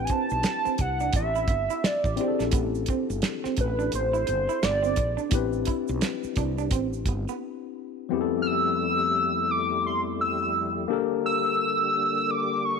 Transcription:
Already playing: tine electric piano C4 D4 E4 G4 B4
0.05 analog synth lead G#5, closed hi-hat
0.09 clean electric guitar C4, analog synth lead A5, kick, shaker
0.30 fretless electric bass B1, shaker
0.43 finger snap, snare, closed hi-hat, shaker
0.65 clean electric guitar C4, muted fretless electric bass stroke, shaker
0.78 fretless electric bass C2, analog synth lead F#5, muted clean electric guitar stroke, kick, closed hi-hat, shaker
1.00 clean electric guitar D4, shaker
1.13 fretless electric bass A1, analog synth lead E5, kick, closed hi-hat, shaker
1.35 clean electric guitar E4, shaker
1.48 fretless electric bass G1, muted clean electric guitar stroke, kick, closed hi-hat
1.70 clean electric guitar E4, shaker
1.84 analog synth lead D5, finger snap, muted fretless electric bass stroke, muted clean electric guitar stroke, snare, closed hi-hat, shaker
2.04 fretless electric bass A1, kick, shaker
2.16 tine electric piano C4 D4 E4 G4, closed hi-hat
2.21 clean electric guitar C4, tine electric piano G#4
2.28 tine electric piano A4
2.39 fretless electric bass A#1, clean electric guitar D4, snare, shaker
2.51 fretless electric bass A1, clean electric guitar B3, kick, closed hi-hat, shaker
2.75 shaker
2.86 clean electric guitar C4, kick, closed hi-hat, shaker
3.10 fretless electric bass G1, shaker
3.22 finger snap, snare, closed hi-hat, shaker
3.44 clean electric guitar C4, muted fretless electric bass stroke, snare, shaker
3.57 fretless electric bass A1, muted clean electric guitar stroke, kick, closed hi-hat, shaker
3.61 analog synth lead B4
3.79 clean electric guitar D4, shaker
3.92 fretless electric bass A1, analog synth lead C5, closed hi-hat, shaker
4.13 clean electric guitar E4, shaker
4.27 fretless electric bass G1, muted clean electric guitar stroke, closed hi-hat, shaker
4.49 clean electric guitar E4, shaker
4.63 fretless electric bass G1, analog synth lead D5, finger snap, snare, closed hi-hat, shaker
4.83 clean electric guitar C4, shaker
4.96 fretless electric bass A#1, muted clean electric guitar stroke, kick, closed hi-hat
5.17 clean electric guitar D4, shaker
5.29 fretless electric bass A1, tine electric piano B3 D4 E4, kick, closed hi-hat, shaker
5.34 tine electric piano C4 G4 B4
5.53 shaker
5.65 clean electric guitar E4, kick, closed hi-hat
5.88 fretless electric bass B1, shaker
6.01 finger snap, muted clean electric guitar stroke, snare, closed hi-hat, shaker
6.24 muted fretless electric bass stroke, shaker
6.36 fretless electric bass C2, clean electric guitar D4, kick, closed hi-hat, shaker
6.58 clean electric guitar D4, shaker
6.71 fretless electric bass A1, clean electric guitar C4, kick, closed hi-hat, shaker
6.93 shaker
7.06 fretless electric bass G1, muted clean electric guitar stroke, kick, closed hi-hat
7.28 clean electric guitar B3, shaker
8.09 tonewheel organ F2 G3 A3 E4 G4, tine electric piano F3 B3 C4 E4
8.13 tine electric piano G4 G#4
8.21 tine electric piano A4
8.42 analog synth lead F6
8.47 analog synth lead E6
9.51 analog synth lead D6
9.87 analog synth lead C6
10.21 analog synth lead E6
10.88 tonewheel organ D3 A#3, tine electric piano A#3 D4 G4
10.92 tine electric piano A4 A#4
11.26 analog synth lead E6
12.31 analog synth lead D6
12.65 analog synth lead C#6

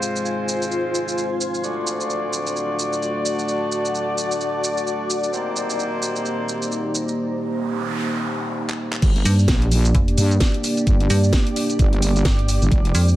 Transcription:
Already playing: horn section G#3 C4 F4 C5, analog synth pad G#3 C4 D#4 C5, ambient pad F4 C5 G#5
0.02 shaker
0.16 shaker
0.26 shaker
0.49 shaker
0.62 shaker
0.72 shaker
0.95 shaker
1.08 shaker
1.18 shaker
1.41 shaker
1.54 shaker
1.64 horn section A3 D4 F#4 D5, analog synth pad A3 D4 F#4 D5, ambient pad F#4, shaker
1.87 shaker
2.01 shaker
2.10 shaker
2.33 shaker
2.47 shaker
2.55 ambient pad D5 A5, shaker
2.79 shaker
2.93 shaker
3.03 shaker
3.26 shaker
3.39 shaker
3.49 shaker
3.72 shaker
3.85 shaker
3.95 shaker
4.18 shaker
4.31 shaker
4.41 shaker
4.64 shaker
4.78 shaker
4.87 shaker
5.10 shaker
5.24 shaker
5.33 analog synth pad A#3 D#4 G4 C5, horn section A#3 C4 D#4 G4 C5, ambient pad D#4, shaker
5.56 shaker
5.63 ambient pad C5
5.70 shaker
5.79 shaker
6.02 shaker
6.16 shaker
6.26 shaker
6.49 shaker
6.62 shaker
6.72 shaker
6.95 shaker
7.08 shaker
7.18 noise sweep
8.70 clap
8.93 clap
9.02 wobble bass G1, analog synth pad A#3 D4 G4 D5, ambient pad G4, kick, closed hi-hat, crash, shaker
9.16 closed hi-hat
9.25 fm bass G2, open hi-hat, shaker
9.39 shaker
9.48 wobble bass A#1, kick, snare, closed hi-hat, shaker
9.62 closed hi-hat
9.72 open hi-hat, shaker
9.82 ambient pad D5, closed hi-hat, shaker
9.95 fm bass F1, kick, closed hi-hat, shaker
10.08 closed hi-hat
10.18 wobble bass G2, open hi-hat, shaker
10.31 closed hi-hat, shaker
10.40 kick, snare, closed hi-hat, shaker
10.54 closed hi-hat
10.64 open hi-hat, shaker
10.77 closed hi-hat, shaker
10.87 wobble bass G1, kick, closed hi-hat, shaker
11.00 closed hi-hat
11.10 fm bass G2, open hi-hat, shaker
11.24 shaker
11.33 kick, snare, closed hi-hat, shaker
11.47 closed hi-hat
11.56 open hi-hat, shaker
11.70 closed hi-hat, shaker
11.79 wobble bass G1, kick, closed hi-hat, shaker
11.93 closed hi-hat
12.02 open hi-hat, shaker
12.16 closed hi-hat, shaker
12.25 fm bass G1, kick, snare, closed hi-hat, shaker
12.39 closed hi-hat
12.49 open hi-hat, shaker
12.62 wobble bass G1, closed hi-hat, shaker
12.71 wobble bass F1, analog synth pad G#3 C4 F4 C5, ambient pad F4, kick, closed hi-hat, shaker
12.85 closed hi-hat
12.95 fm bass F2, open hi-hat, shaker
13.08 shaker

